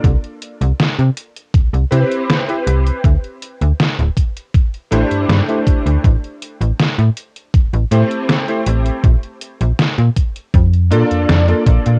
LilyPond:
<<
  \new Staff \with { instrumentName = "Electric grand piano" } { \time 4/4 \key a \minor \tempo 4 = 80 r2 r8 <c' e' g' b' c''>8. <c' e' g' b' c''>8. | r2 r8 <a d' e' g' c''>8. <a d' e' g' c''>8. | r2 r8 <a c' e' g' c''>8. <a c' e' g' c''>8. | r2 r8 <bes d' f' a' d''>8. <bes d' f' a' d''>8. | }
  \new Staff \with { instrumentName = "FM bass" } { \clef bass \time 4/4 \key a \minor c,16 r8 c,16 r16 c16 r8 c,16 c,16 c16 r8. c,16 r16 | d,16 r8 d,16 r16 d,,16 r4 a,,16 g,16 g,16 r8 d,16 | a,,16 r8 a,,16 r16 a,16 r8 a,,16 a,,16 a,16 r8. a,,16 r16 | bes,,16 r8 bes,,16 r16 bes,16 r8 f,8 bes,16 f,16 f,16 r16 bes,,16 bes,16 | }
  \new DrumStaff \with { instrumentName = "Drums" } \drummode { \time 4/4 <hh bd>16 hh16 hh16 hh16 <hh sn>16 hh16 hh16 hh16 <hh bd>16 hh16 hh16 hh16 <hh sn>16 hh16 hh16 hh16 | <hh bd>16 hh16 hh16 hh16 <hh sn>16 hh16 <hh bd>16 hh16 <hh bd>16 hh16 hh16 hh16 <hh sn>16 hh16 <hh bd>16 hh16 | <hh bd>16 hh16 hh16 hh16 <hh sn>16 hh16 hh16 hh16 <hh bd>16 hh16 hh16 hh16 <hh sn>16 hh16 hh16 hh16 | <hh bd>16 hh16 hh16 hh16 <hh sn>16 hh16 <hh bd>16 hh16 <hh bd>16 hh16 hh16 hh16 <hh sn>16 hh16 <hh bd>16 hh16 | }
>>